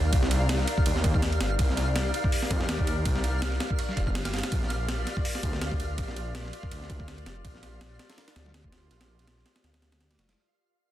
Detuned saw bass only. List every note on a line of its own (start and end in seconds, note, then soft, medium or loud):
0.00 0.11 D#2 loud
0.13 0.66 C2 loud
0.86 1.39 D#2 medium
1.41 1.57 G1 loud
1.59 2.13 C2 loud
2.51 2.67 F2 loud
2.69 3.04 D#2 medium
3.05 3.59 C2 loud
3.97 4.42 G1 medium
4.52 5.05 A#1 loud
5.43 5.60 D2 loud
5.61 5.97 D2 loud
5.98 6.52 A#1 loud
6.71 7.25 D2 medium
7.26 7.43 F1 loud
7.45 7.98 A#1 loud
8.36 8.53 D2 loud
8.54 8.89 D2 loud
8.91 9.44 A#1 loud
9.64 10.00 D2 medium
10.00 10.17 D2 medium
10.19 10.35 F1 medium